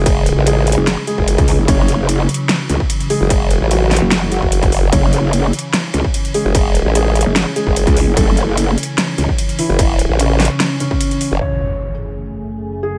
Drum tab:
CC |x-------x-------x-------x-------|x-------x-------x-------x-------|x-------x-------x-------x-------|x-------x-------x-------x-------|
HH |x---x---x---xx--x---x---x-x-o---|x---x---x---xx--x---x---x-x-o---|x---x---x---ox--x---x---x-x-o---|x---x---x---xx--x---x---x-x-o---|
SD |----------------o---------------|----------------o---------------|------------o---o---------------|----------------o---------------|
BD |o---------------------o---o-----|o---------------------o---------|o---------------------o---o-----|o---------------------o---------|

CC |x-------x-------x-------x-------|x-------x-------x-------x-------|x-------x-------x-------x-------|--------------------------------|
HH |x---x---x---xx--x---x---x-x-o---|x---x---x---xx--x---x---x-x-o---|x---x---x---ox--x---x---x-x-o---|--------------------------------|
SD |----------------o---------------|----------------o---------------|------------o---o---------------|--------------------------------|
BD |o---------------------o---o-----|o---------------------o---------|o---------------------o---------|--------------------------------|